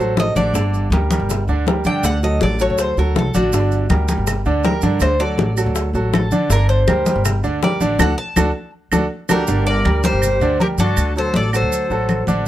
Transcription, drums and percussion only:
0.00 maracas
0.17 high bongo, low bongo, high conga, maracas
0.36 high bongo, high conga, maracas
0.55 high bongo, maracas
0.74 high conga, maracas
0.92 high bongo, high conga, maracas
1.11 high bongo, high conga, maracas
1.30 high bongo, high conga, low conga, maracas
1.48 high bongo, high conga, maracas
1.66 high bongo, low bongo, high conga, maracas
1.84 high conga, maracas
2.04 high bongo, maracas
2.23 high conga, maracas
2.41 high bongo, high conga, maracas
2.59 high bongo, maracas
2.78 high bongo, high conga, maracas
2.97 high bongo, high conga, maracas
3.15 high bongo, low bongo, high conga, maracas
3.34 high conga, maracas
3.53 high bongo, maracas
3.71 high conga, maracas
3.90 high bongo, high conga, claves, maracas
4.08 high bongo, high conga, maracas
4.27 high bongo, high conga, low conga, claves, maracas
4.45 high bongo, high conga, maracas
4.64 high bongo, low bongo, high conga, maracas
4.82 high bongo, high conga, maracas
5.00 high bongo, claves, maracas
5.19 high conga, maracas
5.38 high bongo, high conga, maracas
5.57 high bongo, claves, maracas
5.75 high bongo, high conga, maracas
5.94 high bongo, high conga, maracas
6.13 high bongo, low bongo, high conga, claves, maracas
6.31 high bongo, high conga, maracas
6.50 high bongo, high conga, maracas
6.69 high conga, maracas
6.88 high bongo, high conga, claves, maracas
7.06 high bongo, high conga, maracas
7.25 high bongo, high conga, low conga, claves, maracas
7.44 high bongo, high conga, maracas
7.63 high bongo, low bongo, high conga, maracas
7.81 high bongo, high conga, maracas
7.99 low bongo, high conga, claves, maracas
8.36 low bongo, high conga, claves, maracas
8.92 low bongo, high conga, claves, maracas
9.29 low bongo, high conga, claves, maracas
9.47 high conga, maracas
9.67 high conga, maracas
9.85 high conga, claves, maracas
10.04 high conga, maracas
10.22 high conga, low conga, claves, maracas
10.41 high conga, low conga, maracas
10.60 high conga, maracas
10.78 high conga, maracas
10.97 claves, maracas
11.16 high conga, maracas
11.34 high conga, maracas
11.53 claves, maracas
11.71 high conga, maracas
11.90 high conga, maracas
12.09 high conga, claves, maracas
12.27 high conga, maracas

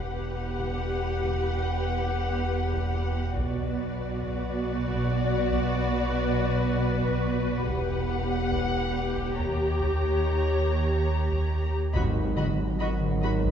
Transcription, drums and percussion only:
0.59 taiko
1.23 taiko
2.73 taiko
3.37 taiko
4.22 taiko
4.87 taiko
5.51 taiko
7.02 taiko
7.66 taiko
8.52 taiko
9.16 taiko
9.80 taiko
11.30 taiko
11.94 taiko
12.37 taiko mid
13.01 taiko mid
13.44 taiko

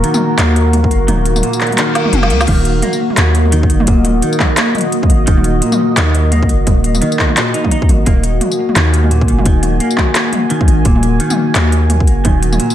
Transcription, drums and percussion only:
0.04 closed hi-hat
0.14 mid tom, tambourine
0.39 clap, closed hi-hat, mid tom
0.56 closed hi-hat
0.73 closed hi-hat, mid tom
0.84 kick
0.91 closed hi-hat
1.08 closed hi-hat, mid tom
1.25 closed hi-hat
1.36 mid tom, tambourine
1.43 closed hi-hat
1.53 tambourine
1.60 clap, closed hi-hat
1.67 closed hi-hat
1.71 closed hi-hat, mid tom
1.78 clap, closed hi-hat
1.95 snare, closed hi-hat
2.06 mid tom
2.13 closed hi-hat, mid tom
2.23 snare
2.30 closed hi-hat, mid tom
2.41 snare, tambourine
2.48 kick, closed hi-hat, mid tom, crash
2.65 closed hi-hat
2.82 closed hi-hat, mid tom
2.93 tambourine
3.10 mid tom
3.17 clap, closed hi-hat
3.35 closed hi-hat
3.45 mid tom
3.52 closed hi-hat
3.63 kick
3.70 closed hi-hat
3.80 mid tom
3.87 kick, closed hi-hat
4.05 closed hi-hat, mid tom
4.22 closed hi-hat
4.33 tambourine
4.40 kick, clap, mid tom
4.57 clap, closed hi-hat
4.75 closed hi-hat, mid tom
4.78 closed hi-hat
4.81 closed hi-hat
4.92 closed hi-hat
5.03 kick, mid tom
5.10 closed hi-hat
5.27 kick, closed hi-hat
5.37 mid tom
5.44 closed hi-hat
5.62 closed hi-hat
5.72 mid tom, tambourine
5.97 clap, closed hi-hat, mid tom
6.15 closed hi-hat
6.32 closed hi-hat, mid tom
6.43 kick
6.49 closed hi-hat
6.67 kick, closed hi-hat, mid tom
6.84 closed hi-hat
6.95 mid tom, tambourine
7.02 closed hi-hat
7.12 tambourine
7.19 kick, clap
7.30 mid tom
7.37 clap, closed hi-hat
7.54 closed hi-hat
7.64 kick, mid tom
7.71 closed hi-hat
7.82 kick
7.89 closed hi-hat, mid tom
8.06 kick, closed hi-hat, mid tom
8.24 closed hi-hat
8.41 closed hi-hat, mid tom
8.52 tambourine
8.69 mid tom
8.76 clap, closed hi-hat
8.94 closed hi-hat
9.04 mid tom
9.11 closed hi-hat
9.21 kick
9.28 closed hi-hat
9.39 mid tom
9.46 kick, closed hi-hat
9.63 closed hi-hat, mid tom
9.80 closed hi-hat
9.91 tambourine
9.98 kick, clap, mid tom
10.15 clap, closed hi-hat
10.33 closed hi-hat, mid tom
10.50 closed hi-hat
10.61 kick, mid tom
10.68 closed hi-hat
10.85 kick, closed hi-hat
10.96 mid tom
11.03 closed hi-hat
11.20 closed hi-hat
11.30 mid tom, tambourine
11.55 clap, closed hi-hat, mid tom
11.72 closed hi-hat
11.90 closed hi-hat, mid tom
12.00 kick
12.07 closed hi-hat
12.25 kick, closed hi-hat, mid tom
12.43 closed hi-hat
12.53 mid tom, tambourine
12.60 closed hi-hat
12.70 tambourine

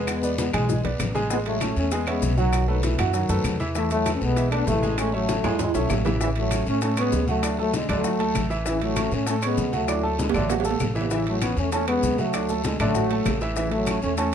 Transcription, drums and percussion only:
0.07 high bongo, high conga, high timbale, long guiro, claves, maracas
0.23 high bongo, high conga, maracas
0.38 high bongo, high conga, high timbale, short guiro, maracas
0.53 high bongo, high conga, low conga, high timbale, short guiro, claves, maracas
0.69 high bongo, high conga, low conga, long guiro, maracas
0.84 low bongo, high conga, high timbale
1.00 low bongo, high conga, high timbale, short guiro, claves, maracas
1.15 low bongo, high conga, short guiro, maracas
1.30 high bongo, long guiro, maracas
1.46 high bongo, high conga, high timbale
1.61 high bongo, high conga, high timbale, short guiro, claves, maracas
1.76 high bongo, high conga, short guiro, maracas
1.91 high bongo, high conga, high timbale, long guiro, maracas
2.07 high bongo, high conga, high timbale, claves
2.22 high bongo, low bongo, high conga, short guiro, maracas
2.37 high conga, short guiro, maracas
2.53 high bongo, high conga, high timbale, long guiro, claves, maracas
2.68 high bongo, high conga
2.83 high bongo, high conga, high timbale, short guiro, maracas
2.99 high bongo, high conga, low conga, high timbale, short guiro, claves, maracas
3.14 high bongo, high conga, long guiro, maracas
3.29 high bongo, high conga, high timbale, maracas
3.44 high bongo, low bongo, high conga, high timbale, short guiro, claves, maracas
3.60 high conga, short guiro, maracas
3.75 high bongo, high conga, long guiro, maracas
3.91 high bongo, high conga, high timbale, maracas
4.06 high bongo, high conga, high timbale, short guiro, claves, maracas
4.21 high bongo, high conga, short guiro, maracas
4.36 high bongo, high timbale, long guiro, maracas
4.51 high bongo, high conga, high timbale, claves
4.67 high bongo, low bongo, high conga, low timbale, short guiro, maracas
4.83 high conga, short guiro, maracas
4.98 high bongo, high timbale, long guiro, claves, maracas
5.13 high bongo, high conga
5.29 high bongo, high conga, high timbale, short guiro, maracas
5.44 high bongo, high conga, low conga, high timbale, short guiro, claves, maracas
5.59 high bongo, high conga, low conga, high timbale, maracas
5.75 high bongo, high conga, maracas
5.90 low bongo, high conga, low timbale, short guiro, claves, maracas
6.05 low bongo, high conga, low timbale, short guiro, maracas
6.21 high bongo, high conga, long guiro, maracas
6.36 high bongo, high conga, high timbale
6.51 high bongo, high conga, high timbale, short guiro, claves, maracas
6.66 high bongo, high conga, short guiro, maracas
6.81 high bongo, high conga, high timbale, long guiro, maracas
6.97 high bongo, high conga, high timbale, claves, maracas
7.12 high bongo, low bongo, high conga, low timbale, short guiro, maracas
7.28 high conga, short guiro, maracas
7.43 high bongo, high conga, high timbale, long guiro, claves, maracas
7.58 high bongo, high conga
7.73 high bongo, high conga, high timbale, short guiro, maracas
7.89 high bongo, high conga, low conga, high timbale, short guiro, claves, maracas
8.04 high bongo, high conga, long guiro, maracas
8.19 high bongo, high conga, high timbale
8.35 high bongo, low bongo, high conga, high timbale, short guiro, claves, maracas
8.50 short guiro, maracas
8.66 high bongo, high conga, long guiro, maracas
8.81 high bongo, high conga, high timbale
8.96 high bongo, high conga, high timbale, short guiro, claves, maracas
9.11 high bongo, high conga, short guiro, maracas
9.27 high bongo, high conga, high timbale, long guiro, maracas
9.42 high bongo, high conga, high timbale, claves, maracas
9.58 high bongo, low bongo, high conga, short guiro, maracas
9.73 high conga, short guiro, maracas
9.88 high bongo, high timbale, long guiro, claves, maracas
10.03 high bongo, high conga
10.19 high bongo, high conga, short guiro, maracas
10.29 low timbale
10.34 high bongo, high conga, low conga, short guiro, claves, maracas
10.40 low timbale
10.49 high bongo, high conga, low timbale, long guiro, maracas
10.60 low timbale
10.65 high bongo, high conga, maracas
10.71 low timbale
10.80 high bongo, low bongo, high conga, low timbale, short guiro, claves, maracas
10.95 high conga, short guiro, maracas
11.01 low timbale
11.11 high bongo, high conga, long guiro, maracas
11.26 high bongo, high conga, high timbale
11.41 high bongo, high conga, high timbale, short guiro, claves, maracas
11.57 high bongo, high conga, short guiro, maracas
11.72 high bongo, high conga, high timbale, long guiro, maracas
11.88 high bongo, high conga, high timbale, claves
12.03 high bongo, low bongo, high conga, short guiro, maracas
12.18 high conga, short guiro, maracas
12.33 high bongo, high timbale, long guiro, claves, maracas
12.49 high bongo, high conga, maracas
12.64 high bongo, high conga, high timbale, short guiro, maracas
12.79 high bongo, high conga, low conga, high timbale, short guiro, claves, maracas
12.95 high bongo, high conga, low conga, long guiro, maracas
13.11 high bongo, high conga, high timbale
13.25 high bongo, low bongo, high conga, high timbale, low timbale, short guiro, claves, maracas
13.41 short guiro, maracas
13.56 high bongo, high conga, long guiro, maracas
13.71 high bongo, high conga, high timbale
13.87 high bongo, high conga, high timbale, short guiro, claves, maracas
14.02 high bongo, high conga, short guiro, maracas
14.17 high bongo, high conga, high timbale, long guiro, maracas

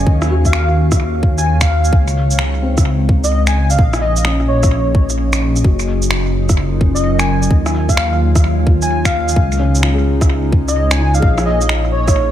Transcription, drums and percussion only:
0.07 kick
0.22 cross-stick, shaker
0.45 kick, shaker
0.53 finger snap
0.92 kick, cross-stick, shaker
1.23 kick
1.38 shaker
1.61 finger snap, kick, shaker
1.85 shaker
1.93 kick
2.08 shaker
2.31 shaker
2.39 finger snap
2.78 kick, cross-stick, shaker
3.09 kick
3.24 shaker
3.47 finger snap, shaker
3.70 shaker
3.79 kick
3.93 cross-stick, shaker
4.17 shaker
4.25 finger snap
4.63 kick, cross-stick, shaker
4.95 kick
5.10 shaker
5.33 finger snap, shaker
5.56 shaker
5.64 kick
5.79 shaker
6.02 shaker
6.11 finger snap
6.49 kick, cross-stick, shaker
6.81 kick
6.96 shaker
7.19 finger snap, shaker
7.43 shaker
7.51 kick
7.66 cross-stick, shaker
7.89 kick, shaker
7.97 finger snap
8.35 kick, cross-stick, shaker
8.67 kick
8.82 shaker
9.05 finger snap, kick, shaker
9.29 shaker
9.36 kick
9.52 shaker
9.75 shaker
9.83 finger snap
10.21 kick, cross-stick, shaker
10.52 kick
10.68 shaker
10.91 finger snap, shaker
11.15 shaker
11.22 kick
11.38 cross-stick, shaker
11.61 shaker
11.69 finger snap
12.08 kick, cross-stick, shaker

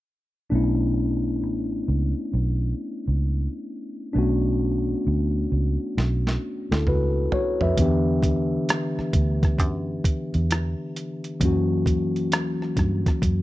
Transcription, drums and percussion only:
5.98 snare
6.27 snare
6.72 snare
6.87 mid tom
7.32 floor tom
7.61 floor tom
7.77 kick, closed hi-hat
8.23 kick, closed hi-hat
8.69 cross-stick, closed hi-hat
8.99 cross-stick
9.13 kick, closed hi-hat
9.43 kick, cross-stick, closed hi-hat
9.58 kick, closed hi-hat
10.04 kick, closed hi-hat
10.34 closed hi-hat
10.51 cross-stick, closed hi-hat
10.96 closed hi-hat
11.24 closed hi-hat
11.41 kick, closed hi-hat
11.86 kick, closed hi-hat
12.16 closed hi-hat
12.32 cross-stick, closed hi-hat
12.62 cross-stick
12.77 kick, cross-stick, closed hi-hat
13.06 kick, cross-stick, closed hi-hat
13.22 kick, closed hi-hat

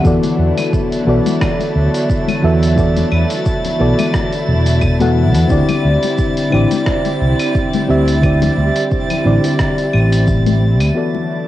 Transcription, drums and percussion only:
0.05 kick, shaker
0.23 open hi-hat, muted conga, low conga, shaker
0.58 open hi-hat, muted conga, claves, shaker
0.73 kick, shaker
0.92 open hi-hat, shaker
1.26 open hi-hat, high conga, shaker
1.41 kick, cross-stick, claves, shaker
1.60 open hi-hat, muted conga, shaker
1.94 open hi-hat, shaker
2.10 kick, shaker
2.28 open hi-hat, high conga, claves, shaker
2.63 open hi-hat, shaker
2.78 kick, shaker
2.97 open hi-hat, muted conga, low conga, shaker
3.12 claves
3.30 open hi-hat, shaker
3.46 kick, shaker
3.65 open hi-hat, low conga, shaker
3.99 open hi-hat, high conga, claves, shaker
4.14 kick, cross-stick, shaker
4.33 open hi-hat, shaker
4.66 open hi-hat, shaker
4.82 kick, claves, shaker
5.01 open hi-hat, high conga, shaker
5.35 open hi-hat, shaker
5.50 kick, shaker
5.69 open hi-hat, muted conga, low conga, claves, shaker
6.03 open hi-hat, muted conga, shaker
6.18 kick, shaker
6.37 open hi-hat, shaker
6.52 claves
6.71 open hi-hat, high conga, shaker
6.86 kick, cross-stick, shaker
7.05 open hi-hat, muted conga, shaker
7.39 open hi-hat, claves, shaker
7.55 kick, shaker
7.73 open hi-hat, high conga, shaker
8.07 open hi-hat, shaker
8.23 kick, claves, shaker
8.42 open hi-hat, muted conga, low conga, shaker
8.75 open hi-hat, shaker
8.91 kick, shaker
9.10 open hi-hat, low conga, claves, shaker
9.44 open hi-hat, muted conga, high conga, shaker
9.59 kick, cross-stick, shaker
9.78 open hi-hat, shaker
9.93 claves
10.12 open hi-hat, shaker
10.27 kick, shaker
10.46 open hi-hat, high conga, shaker
10.80 open hi-hat, claves, shaker
11.15 muted conga, low conga

